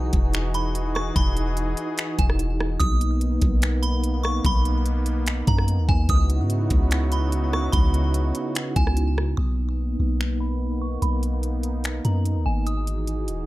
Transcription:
Already playing: 808-style bass B1, analog synth pad E3 D#4 F#4 G#4, synth bell D#6
0.13 808-style bass E1, kick, closed hi-hat
0.34 finger snap, closed hi-hat
0.54 synth bell B5, closed hi-hat
0.75 closed hi-hat
0.95 synth bell C#6, cross-stick
1.16 808-style bass E1, synth bell B5, kick, closed hi-hat
1.37 closed hi-hat
1.57 closed hi-hat
1.77 closed hi-hat
1.98 finger snap, closed hi-hat
2.19 808-style bass E1, synth bell G#5, kick, closed hi-hat
2.30 cross-stick
2.39 closed hi-hat
2.60 cross-stick
2.80 808-style bass B1, analog synth pad A#3 B3, synth bell D#6, kick, closed hi-hat
3.01 closed hi-hat
3.21 closed hi-hat
3.42 808-style bass B1, kick, closed hi-hat
3.62 finger snap, closed hi-hat
3.83 synth bell B5, closed hi-hat
4.04 closed hi-hat
4.23 synth bell C#6, cross-stick
4.45 808-style bass B1, synth bell B5, kick, closed hi-hat
4.65 closed hi-hat
4.86 closed hi-hat
5.06 closed hi-hat
5.26 finger snap, closed hi-hat
5.47 808-style bass F#2, synth bell A#5, kick, closed hi-hat
5.58 cross-stick
5.68 closed hi-hat
5.78 808-style bass D#2
5.89 808-style bass D#2, synth bell G#5, kick
6.09 808-style bass C#2, analog synth pad C#3 B3 D#4 E4 F#4, synth bell D#6, kick, closed hi-hat
6.30 closed hi-hat
6.40 808-style bass G#2
6.50 closed hi-hat
6.70 808-style bass C#2, kick, closed hi-hat
6.91 finger snap, closed hi-hat
7.12 synth bell B5, closed hi-hat
7.32 closed hi-hat
7.53 synth bell C#6, cross-stick
7.72 808-style bass C#2, synth bell B5, kick, closed hi-hat
7.94 closed hi-hat
8.14 closed hi-hat
8.35 closed hi-hat
8.55 finger snap, closed hi-hat
8.76 808-style bass C#2, synth bell G#5, kick, closed hi-hat
8.87 cross-stick
8.97 closed hi-hat
9.18 cross-stick
9.37 808-style bass B1, analog synth pad A#3 B3 D#4, synth bell D#6
9.99 808-style bass B1
10.21 finger snap
10.40 synth bell B5
10.82 synth bell C#6
11.02 808-style bass B1, synth bell B5, closed hi-hat
11.23 closed hi-hat
11.43 closed hi-hat
11.63 closed hi-hat
11.84 finger snap, closed hi-hat
12.05 808-style bass F#2, synth bell A#5, closed hi-hat
12.26 closed hi-hat
12.36 808-style bass D#2
12.46 808-style bass G#1, synth bell G#5
12.67 analog synth pad E3 F#4 G#4, synth bell D#6, closed hi-hat
12.87 closed hi-hat
13.07 closed hi-hat
13.28 808-style bass D#1, closed hi-hat

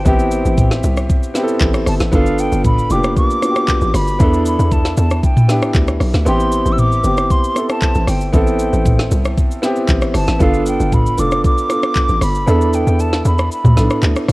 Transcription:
Already playing: grand piano B3 C4 E4 F4 F#4 G4
0.05 log drum bass A1, grand piano B3 C4 E4 G4, flute G5, kick, shaker
0.19 shaker
0.31 shaker
0.45 log drum bass A1, shaker
0.58 kick, mid tom, shaker
0.71 snare, shaker
0.83 log drum bass C2, shaker
0.97 cross-stick, shaker
1.10 kick, shaker
1.23 shaker
1.34 grand piano B3 C4 E4 G4, snare, shaker
1.43 grand piano A4
1.48 shaker
1.60 log drum bass A1, kick, clap, shaker
1.74 cross-stick, shaker
1.87 log drum bass G1, flute A5, cross-stick, open hi-hat, shaker
2.00 log drum bass A1, snare, shaker
2.12 log drum bass G1, grand piano B3 D4 F4 A4, flute F5, kick, shaker
2.26 shaker
2.39 flute G5, shaker
2.52 log drum bass G1, shaker
2.65 flute B5, kick, mid tom, shaker
2.79 shaker
2.89 log drum bass F1, grand piano A#3 D4 F4 G4, flute D6, shaker
2.96 grand piano B3
3.04 cross-stick, shaker
3.17 flute D6, kick, shaker
3.30 shaker
3.41 grand piano B3 D4 F4 F#4, cross-stick, shaker
3.50 grand piano G4
3.56 cross-stick, shaker
3.68 kick, clap, shaker
3.81 log drum bass A1, shaker
3.94 log drum bass G1, flute B5, cross-stick, open hi-hat, shaker
4.07 shaker
4.19 log drum bass E2, grand piano B3 D4 E4 A4, kick, shaker
4.33 shaker
4.45 flute B5, shaker
4.59 log drum bass E2, shaker
4.71 flute A5, kick, shaker
4.85 snare, shaker
4.97 log drum bass E2, flute A5, shaker
5.11 cross-stick, shaker
5.23 flute G5, kick, shaker
5.37 mid tom, shaker
5.48 grand piano B3 D4 E4 G4, snare, shaker
5.62 cross-stick, shaker
5.74 log drum bass D2, kick, clap, shaker
5.88 cross-stick, shaker
6.01 log drum bass B1, cross-stick, open hi-hat, shaker
6.14 log drum bass D2, snare, shaker
6.26 log drum bass A1, grand piano B3 C4 E4 G4, flute C6, shaker
6.40 shaker
6.52 shaker
6.66 log drum bass A1, shaker
6.73 flute E6
6.79 flute D6, mid tom, shaker
6.92 shaker
7.03 log drum bass G1, grand piano B3 C4 E4 G4, shaker
7.17 cross-stick, shaker
7.30 flute C6, kick, shaker
7.44 shaker
7.55 grand piano B3 C4 E4 A4, cross-stick, shaker
7.69 flute A5, cross-stick, shaker
7.81 kick, clap, shaker
7.95 log drum bass A1, shaker
8.07 log drum bass G1, flute G5, cross-stick, open hi-hat, shaker
8.21 shaker
8.33 log drum bass A1, grand piano B3 C4 E4 A4, flute G5, kick, shaker
8.47 shaker
8.59 shaker
8.73 log drum bass A1, shaker
8.85 kick, mid tom, shaker
8.99 snare, shaker
9.11 log drum bass C2, shaker
9.24 cross-stick, shaker
9.37 kick, shaker
9.51 shaker
9.62 grand piano B3 C4 E4 G4, snare, shaker
9.76 shaker
9.88 log drum bass A1, kick, clap, shaker
10.02 cross-stick, shaker
10.14 log drum bass G1, flute A5, cross-stick, open hi-hat, shaker
10.28 log drum bass A1, snare, shaker
10.39 log drum bass G1, grand piano B3 D4 F4 A4, flute F5, kick, shaker
10.54 shaker
10.66 flute G5, shaker
10.80 log drum bass G1, shaker
10.92 flute B5, kick, mid tom, shaker
11.06 shaker
11.17 log drum bass F1, grand piano B3 D4 F4 A4, flute D6, shaker
11.31 cross-stick, shaker
11.44 flute D6, kick, shaker
11.58 shaker
11.69 grand piano B3 D4 F4 A4, cross-stick, shaker
11.83 cross-stick, shaker
11.95 kick, clap, shaker
12.09 log drum bass A1, shaker
12.21 log drum bass G1, flute B5, cross-stick, open hi-hat, shaker
12.35 shaker
12.46 log drum bass E2, grand piano B3 D4 E4 A4, shaker
12.61 shaker
12.73 flute G5, shaker
12.87 log drum bass E2, shaker
12.99 flute A5, shaker
13.13 snare, shaker
13.25 log drum bass E2, flute B5, shaker
13.38 cross-stick, shaker
13.51 flute B5, shaker
13.64 log drum bass D2, mid tom, shaker
13.76 log drum bass B1, grand piano B3 D4 E4 A4, snare, shaker
13.90 cross-stick, shaker
14.02 log drum bass D2, clap, shaker
14.16 cross-stick, shaker
14.28 log drum bass E2, cross-stick, open hi-hat, shaker

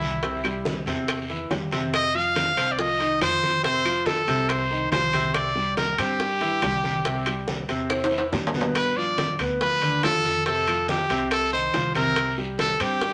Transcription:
Already playing: upright bass C2, grand piano G3 G4, trumpet E4
0.01 high bongo, high conga, short guiro
0.23 grand piano C3 C4, high bongo, high conga, high timbale, long guiro
0.44 grand piano G3 G4, high conga, high timbale, claves
0.65 high bongo, high conga, short guiro
0.86 upright bass E2, grand piano C3 C4, high bongo, high conga, high timbale, short guiro
1.08 high bongo, high conga, high timbale, long guiro, claves
1.30 grand piano E3 E4, high bongo, high conga
1.50 upright bass F2, grand piano G3 G4, high bongo, low bongo, high conga, high timbale, short guiro
1.71 grand piano C3 C4, high bongo, high conga, high timbale, short guiro
1.93 trumpet D#5, high bongo, high conga, high timbale, long guiro, claves
2.14 grand piano F3 F4, trumpet F5, high conga
2.35 high bongo, high conga, high timbale, short guiro
2.56 upright bass C2, grand piano C4 C5, high bongo, high conga, high timbale, short guiro, claves
2.72 trumpet D5
2.78 grand piano F3 F4, trumpet D#5, high bongo, high conga, long guiro
2.99 grand piano D#3 D#4, high bongo, high conga, high timbale
3.21 upright bass F2, grand piano F3 F4, trumpet C5, high bongo, low bongo, high conga, high timbale, short guiro, claves
3.43 high bongo, high conga, short guiro
3.63 grand piano C3 C4, trumpet C5, high bongo, high conga, high timbale, long guiro
3.85 grand piano F3 F4, high conga, high timbale, claves
4.06 trumpet A4, high bongo, high conga, short guiro
4.27 upright bass C2, grand piano C3 C4, high bongo, high conga, high timbale, short guiro
4.49 trumpet C5, high bongo, high conga, high timbale, long guiro, claves
4.71 grand piano D#3 D#4, high bongo, high conga
4.92 upright bass C2, grand piano F3 F4, trumpet C5, high bongo, low bongo, high conga, high timbale, low timbale, short guiro
5.13 grand piano C3 C4, high bongo, high conga, high timbale, short guiro
5.34 trumpet D5, high bongo, high conga, high timbale, long guiro, claves
5.55 grand piano G3 G4, high conga
5.77 trumpet A#4, high bongo, high conga, high timbale, short guiro
5.98 upright bass G2, grand piano C4 C5, trumpet G4, high bongo, high conga, high timbale, short guiro, claves
6.20 grand piano G3 G4, high bongo, high conga, long guiro
6.41 grand piano E3 E4, high bongo, high conga, high timbale
6.62 upright bass C2, grand piano G3 G4, high bongo, low bongo, high conga, high timbale, short guiro, claves
6.84 high bongo, high conga, short guiro
7.05 grand piano C3 C4, high bongo, high timbale, long guiro
7.26 grand piano G3 G4, high conga, high timbale, claves
7.48 high bongo, high conga, short guiro
7.68 upright bass E2, grand piano C3 C4, high bongo, high conga, high timbale, short guiro
7.90 high bongo, high conga, high timbale, long guiro, claves
8.04 high timbale
8.11 grand piano E3 E4, high bongo, high conga
8.18 high timbale
8.32 upright bass G2, grand piano G3 G4, high bongo, low bongo, high conga, low timbale, short guiro
8.47 low timbale
8.54 grand piano B2 B3, high bongo, high conga, short guiro
8.61 low timbale
8.75 trumpet B4, high bongo, high conga, high timbale, long guiro, claves
8.97 grand piano F3 F4, trumpet D5, high conga
9.18 high bongo, high conga, high timbale, short guiro
9.39 upright bass D2, grand piano B3 B4, high bongo, high conga, high timbale, short guiro, claves
9.61 grand piano F3 F4, trumpet B4, high bongo, high conga, long guiro
9.82 grand piano D3 D4, high bongo, high conga, high timbale
10.03 upright bass F2, grand piano F3 F4, trumpet A4, high bongo, low bongo, high conga, high timbale, low timbale, short guiro, claves
10.25 high bongo, high conga, short guiro
10.46 grand piano C3 C4, trumpet A4, high bongo, high conga, high timbale, long guiro
10.67 grand piano F3 F4, high conga, high timbale, claves
10.88 trumpet G4, high bongo, high conga, short guiro
11.09 upright bass C2, grand piano C3 C4, high bongo, high conga, high timbale, short guiro
11.31 trumpet A4, high bongo, high conga, high timbale, long guiro, claves
11.53 grand piano D#3 D#4, trumpet C5, high bongo, high conga
11.73 upright bass C2, grand piano F3 F4, high bongo, low bongo, high conga, high timbale, short guiro
11.95 grand piano C3 C4, trumpet A#4, high bongo, high conga, high timbale, short guiro
12.16 high bongo, high conga, high timbale, long guiro, claves
12.38 grand piano G3 G4, high conga
12.59 trumpet A4, high bongo, high conga, high timbale, short guiro
12.80 upright bass G2, grand piano C4 C5, trumpet G4, high bongo, high conga, high timbale, short guiro, claves
13.01 grand piano G3 G4, high bongo, high conga, long guiro

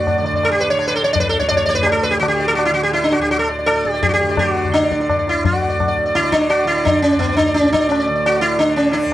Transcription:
Already playing: tanpura D2 A2 D3, sitar F#4
0.07 sitar D5, tabla na, tabla ge
0.18 tanpura D3, sitar D5
0.24 sitar D5, tabla te
0.33 sitar D5, tabla ge
0.43 sitar A4, tabla na
0.52 sitar G4
0.60 sitar B4
0.70 tanpura D3, sitar C#5
0.79 sitar D5, tabla na
0.88 sitar B4
0.96 sitar A4
1.04 sitar C#5
1.13 sitar D5, tabla tin, tabla ge
1.20 tanpura D2, sitar B4
1.29 sitar A4
1.34 tabla na
1.39 sitar C#5, tabla ke
1.48 sitar D5, tabla na, tabla ge
1.57 sitar C#5
1.66 sitar D5, tabla te
1.70 tanpura A2, sitar C#5
1.75 sitar B4, tabla ge
1.83 sitar G4, tabla na
1.92 sitar A4
2.03 sitar B4, tabla na
2.11 sitar G4
2.20 tanpura D3, sitar F#4, tabla na
2.28 sitar G4
2.40 sitar D5
2.48 sitar A4
2.55 sitar F#4, tabla na
2.65 tanpura D3, sitar E4
2.74 sitar F#4
2.83 sitar G4
2.93 sitar E4, tabla tin
3.04 sitar D4
3.12 sitar F#4, tabla na
3.18 tanpura D2, sitar G4
3.31 sitar F#4, tabla tin
3.39 sitar A4
3.49 sitar D5
3.59 sitar D5
3.66 tanpura A2, sitar A4, tabla na
3.75 sitar D5
3.85 sitar D5, tabla ke
3.90 sitar G4 D5
4.03 sitar G4, tabla tin, tabla ge
4.09 sitar F#4
4.14 sitar G4
4.20 tanpura D3
4.30 sitar D5
4.37 sitar F#4, tabla na, tabla ge
4.56 sitar D5, tabla te
4.65 tanpura D3, tabla ge
4.74 sitar D4, tabla te
4.83 sitar D5, tabla te
4.92 sitar D5, tabla ke
5.00 sitar D5, tabla te
5.09 sitar D5, tabla na, tabla ge
5.17 tanpura D2, sitar D5
5.27 sitar E4, tabla te
5.45 sitar F#4, tabla tin, tabla ge
5.53 sitar D5
5.62 tanpura A2, sitar D5
5.70 sitar D5
5.80 tabla na, tabla ge
5.88 sitar D5
5.98 tabla ge
6.06 sitar D5
6.14 tanpura D3, sitar E4, tabla te
6.24 sitar D5, tabla te
6.32 sitar D4, tabla ke
6.41 sitar D5, tabla te
6.50 sitar F#4, tabla na
6.59 sitar D5
6.64 tanpura D3, sitar E4
6.77 sitar D5
6.85 sitar D4, tabla tin, tabla ge
6.93 sitar D5
7.02 sitar C#4
7.12 tanpura D2, sitar D5
7.19 sitar B3, tabla na, tabla ge
7.29 sitar D5
7.37 sitar D4, tabla ge
7.46 sitar D5
7.54 sitar C#4, tabla te
7.59 tanpura A2, sitar D5
7.65 tabla te
7.73 sitar D4, tabla ke
7.80 sitar D5, tabla te
7.89 sitar C#4, tabla na
7.99 sitar D5
8.07 tanpura D3, sitar D5
8.16 sitar D5
8.26 sitar F#4, tabla na
8.37 sitar D5
8.41 sitar E4
8.57 tanpura D3, sitar D4, tabla tin
8.70 sitar D5
8.76 sitar C#4, tabla na
8.91 sitar D4 E4, tabla tin
9.03 tanpura D2, sitar D5

